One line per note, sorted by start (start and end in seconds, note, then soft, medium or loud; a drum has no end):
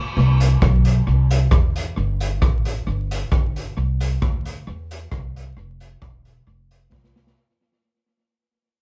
0.17 0.55 C2 loud
0.40 closed hi-hat medium
0.62 1.00 B1 loud
0.62 kick loud
0.62 cross-stick loud
0.85 closed hi-hat medium
1.07 1.45 C2 loud
1.31 closed hi-hat loud
1.51 1.90 E2 medium
1.51 kick loud
1.51 cross-stick loud
1.76 closed hi-hat loud
1.97 2.42 G1 loud
2.20 closed hi-hat medium
2.42 2.80 A1 medium
2.42 kick loud
2.42 cross-stick loud
2.65 closed hi-hat loud
2.87 3.25 G1 loud
3.11 closed hi-hat loud
3.32 3.70 G1 medium
3.32 kick loud
3.32 cross-stick loud
3.56 closed hi-hat medium
3.77 4.15 C2 loud
4.00 closed hi-hat medium
4.22 4.60 D2 medium
4.22 kick loud
4.22 cross-stick loud
4.45 closed hi-hat medium
4.67 5.05 E2 loud
4.91 closed hi-hat loud
5.12 5.50 C2 medium
5.12 kick loud
5.12 cross-stick loud
5.36 closed hi-hat medium
5.57 5.95 F1 medium
5.80 closed hi-hat medium
6.02 6.40 E1 medium
6.02 kick loud
6.02 cross-stick loud
6.25 closed hi-hat medium
6.47 6.86 F1 loud
6.71 closed hi-hat loud
6.92 7.31 C2 loud
6.92 kick loud
6.92 snare medium
7.04 snare medium
7.16 snare loud
7.27 snare loud